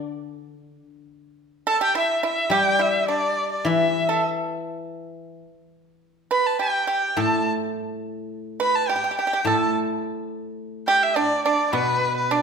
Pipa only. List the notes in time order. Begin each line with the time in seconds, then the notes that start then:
1.67 A4
1.81 G4
1.95 E4
2.23 E4
2.51 G4
2.79 E4
3.08 D4
3.66 E4
4.09 A4
6.31 B4
6.59 G4
6.87 G4
7.17 A4
8.60 B4
8.89 G4
8.96 G4
9.04 G4
9.11 G4
9.19 G4
9.27 G4
9.33 G4
9.47 A4
10.88 G4
11.16 D4
11.46 D4
11.73 B3
12.31 D4